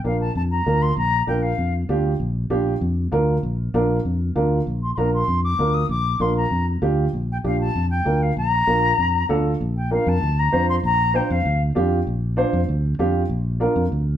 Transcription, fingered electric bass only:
0.05 A#1
0.35 F2
0.66 D2
0.97 A#1
1.28 A#1
1.58 F2
1.89 D2
2.20 A#1
2.50 A#1
2.81 F2
3.12 D2
3.43 A#1
3.74 A#1
4.05 F2
4.36 D2
4.67 A#1
4.98 A#1
5.28 F2
5.59 D2
5.89 A#1
6.20 A#1
6.51 F2
6.82 D2
7.13 A#1
7.44 A#1
7.75 F2
8.06 D2
8.37 A#1
8.67 A#1
8.98 F2
9.29 D2
9.61 A#1
10.07 F2
10.23 D2
10.53 F2
10.84 A#1
11.30 F2
11.45 D2
11.77 F2
12.07 A#1
12.53 F2
12.69 D2
12.99 F2
13.29 A#1
13.76 F2
13.92 D2

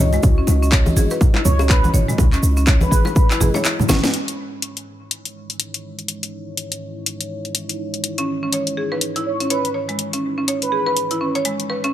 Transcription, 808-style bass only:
Already playing: C#2
0.24 C#2
0.48 C#2
0.96 G#1
1.45 C#2
1.94 G#1
2.18 C#2
2.43 C#2
2.92 G#1
3.40 G#1
3.89 G#1

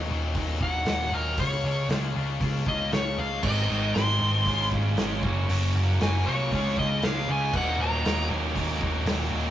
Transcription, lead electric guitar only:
0.63 F#5
1.14 A#4
1.39 C#5
2.68 D#5
2.93 C#5
3.19 F5
3.43 D#5
3.94 C6
6.02 G#5
6.26 C#5
6.79 D#5
7.04 F5
7.32 G#5
7.56 F#5
7.81 A#5

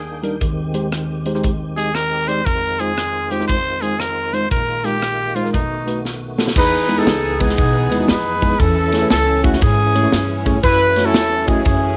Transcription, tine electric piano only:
Already playing: D#2 D#3
0.23 G3 D4 D#4 A#4
0.41 D#2 D#3
0.74 G#3 D#4 G4 C5
1.26 G#3 D#4 G4 C5
1.35 G#3 D#4 G4 C5
1.77 G#3 D#4 G4 D#5
2.28 G#3 D#4 G4 D5
2.47 F2
2.80 G#3 D#4 F4 C5
3.31 G#3 D#4 F4 C5
3.40 G#3 D#4 F4 C5
3.82 G#3 D#4 F4 C5
4.33 G#3 D#4 F4 C5
4.52 A#1 A#2
4.84 G#3 D#4 F4 A#4
5.36 G#3 D#4 F4 C5
5.45 G#3 D#4 F4 A#4
5.53 B1 B2
5.87 A3 D#4 F#4 B4
6.38 A3 D#4 F#4 A4
6.56 E3
6.88 G#3 B3 D#4 E4 B4
6.98 G#3 B3 D#4 E4 B4
7.40 G#3 B3 D#4 E4 B4
7.91 G#3 B3 D#4 E4 B4
8.00 G#3 B3 D#4 E4 F#4
8.42 G#3 B3 D#4 E4 G#4
8.60 E3
8.93 A3 C#4 E4 G#4 C#5
9.02 A3 C#4 E4 G#4 B4
9.43 A3 C#4 E4 G#4 E5
9.95 A3 C#4 E4 G#4 C#5
10.03 A3 C#4 E4 G#4 C#5
10.46 A3 C#4 E4 G#4 C#5
10.96 A3 C#4 E4 F#4 C#5
11.05 A3 C#4 E4 F#4 C#5
11.47 A3 C#4 E4 F#4 D#5

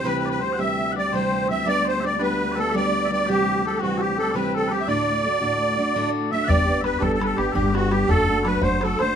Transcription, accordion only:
0.05 B4
0.18 B4
0.30 B4
0.41 C5
0.59 E5
0.98 D5
1.14 C5
1.50 E5
1.68 D5
1.88 C5
2.05 D5
2.22 B4
2.58 A4
2.76 D5
3.13 D5
3.29 G4
3.66 A4
3.77 G4
3.82 F#4
4.01 G4
4.18 A4
4.34 B4
4.55 A4
4.71 G4
4.80 E5
4.88 D5
6.32 E5
6.47 D5
6.84 B4
7.00 A4
7.13 A4
7.25 A4
7.37 G4
7.55 G4
7.75 F#4
7.91 G4
8.09 A4
8.46 B4
8.63 C5
8.83 A4
9.00 C5

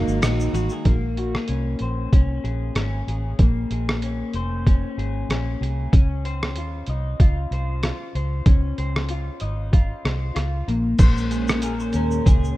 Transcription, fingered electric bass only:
0.08 G#1
0.22 A#1
0.53 A1
0.86 A#1
1.49 C2
1.80 A#1
2.13 C2
2.44 A#1
2.75 G#1
3.07 A1
3.39 A#1
3.71 A#1
4.34 F1
4.98 G#1
5.29 A#1
5.61 C2
5.93 C#2
6.56 D#2
6.88 C2
7.20 C#2
7.51 C2
8.15 C#2
8.46 C#2
8.78 C#2
9.41 G#1
10.05 C2
10.36 C#2
10.68 A#1
10.99 A#1
11.94 D#2
12.26 C#2

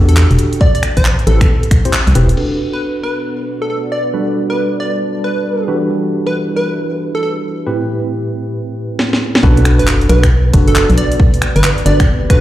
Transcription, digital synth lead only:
0.09 A4
0.17 A4
0.61 D5
0.75 D5
0.97 C5
1.27 A4
2.73 B4
3.03 B4
3.62 A4
3.70 A4
3.92 D5
4.50 B4
4.80 D5
5.24 B4
6.26 B4
6.56 B4
7.15 A4
7.23 A4
9.79 B4
10.09 B4
10.68 A4
10.76 A4
10.98 D5
11.56 B4
11.86 D5
12.30 B4

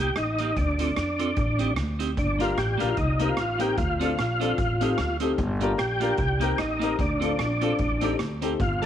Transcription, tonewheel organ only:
Already playing: G4
0.17 D#4
0.58 D4
2.18 D4
2.41 F4
2.58 G4
2.81 F4
2.91 F4
2.97 D#4
3.29 F4
3.60 G4
3.78 F4
5.78 G4
6.18 G4
6.59 D#4
7.01 D4
8.61 F4
8.82 A4

